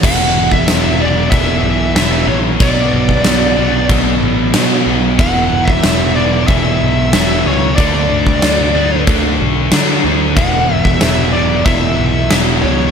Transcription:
<<
  \new Staff \with { instrumentName = "Lead electric guitar" } { \time 4/4 \key e \dorian \tempo 4 = 93 fis''8. e''8. d''8 e''4 e''8 cis''8 | d''2 r2 | fis''8. e''8. d''8 e''4 e''8 cis''8 | d''2 r2 |
fis''8. e''8. d''8 e''4 e''8 cis''8 | }
  \new Staff \with { instrumentName = "Distorted electric guitar" } { \clef bass \time 4/4 \key e \dorian <e, b, e>4 <e, b, e>8 <e, b, e>8 <e, b, e>4 <e, b, e>8 <e, b, e>8 | <b, fis b>4 <b, fis b>8 <b, fis b>8 <b, fis b>4 <b, fis b>8 <b, fis b>8 | <e, b, e>4 <e, b, e>8 <e, b, e>8 <e, b, e>4 <e, b, e>8 <e, b, e>8 | <d a d'>4 <d a d'>8 <d a d'>8 <d a d'>4 <d a d'>8 <d a d'>8 |
<e, b, e>4 <e, b, e>8 <e, b, e>8 <e, b, e>4 <e, b, e>8 <e, b, e>8 | }
  \new Staff \with { instrumentName = "Distorted electric guitar" } { \clef bass \time 4/4 \key e \dorian <e, b, e>4. <e, b, e>4. <e, b, e>4 | <b, fis b>4. <b, fis b>4. <b, fis b>4 | <e, b, e>4. <e, b, e>4. <e, b, e>4 | <d a d'>4. <d a d'>4. <d a d'>4 |
<e, b, e>4. <e, b, e>4. <e, b, e>4 | }
  \new Staff \with { instrumentName = "Overdriven electric guitar" } { \clef bass \time 4/4 \key e \dorian <e, b, e>4 <e, b, e>8 <e, b, e>8 <e, b, e>4 <e, b, e>8 <e, b, e>8 | <b, fis b>4 <b, fis b>8 <b, fis b>8 <b, fis b>4 <b, fis b>8 <b, fis b>8 | <e, b, e>4 <e, b, e>8 <e, b, e>8 <e, b, e>4 <e, b, e>8 <e, b, e>8 | <d a d'>4 <d a d'>8 <d a d'>8 <d a d'>4 <d a d'>8 <d a d'>8 |
<e, b, e>4 <e, b, e>8 <e, b, e>8 <e, b, e>4 <e, b, e>8 <e, b, e>8 | }
  \new Staff \with { instrumentName = "Picked electric bass" } { \clef bass \time 4/4 \key e \dorian e,,8 e,,8 e,,4 e,,8 b,,8 e,,8 ais,,8 | b,,8 b,,8 b,,8 b,,8 b,,8 a,,8 b,8 b,,8 | e,,8 e,,8 e,,4 e,,8 b,,8 e,,8 cis,8 | d,8 d,8 d,8 d,8 d,8 b,,8 d8 d,8 |
e,,8 e,,8 e,,4 e,,8 b,,8 e,,8 cis,8 | }
  \new DrumStaff \with { instrumentName = "Drums" } \drummode { \time 4/4 <cymc bd>8. bd16 <cymc sn>4 <cymc bd>4 <cymc sn>4 | <cymc bd>8. bd16 <cymc sn>4 <cymc bd>4 <cymc sn>4 | <cymc bd>8. bd16 <cymc sn>4 <cymc bd>4 <cymc sn>4 | <cymc bd>8. bd16 <cymc sn>4 <cymc bd>4 <cymc sn>4 |
<cymc bd>8. bd16 <cymc sn>4 <cymc bd>4 <cymc sn>4 | }
>>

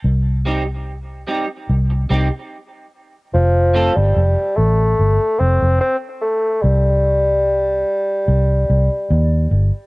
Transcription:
<<
  \new Staff \with { instrumentName = "Clean electric guitar" } { \time 4/4 \key c \dorian \tempo 4 = 73 r8 <g c' ees' g'>8 r8 <g c' ees' g'>8 r8 <g c' ees' g'>8 r4 | r8 <a c' f' a'>8 r2. | r1 | }
  \new Staff \with { instrumentName = "Bassoon" } { \time 4/4 \key c \dorian r1 | f8. g8. a4 c'8 c'8 a8 | g2.~ g8 r8 | }
  \new Staff \with { instrumentName = "Fingered electric bass" } { \clef bass \time 4/4 \key c \dorian c,4. r8 c,8 c,16 r4 r16 | f,,8. g,,16 f,,16 r16 a,,8 g,,16 r16 f,,16 f,,16 r4 | c,4. r8 c,8 c,16 r16 ees,8 g,,16 r16 | }
>>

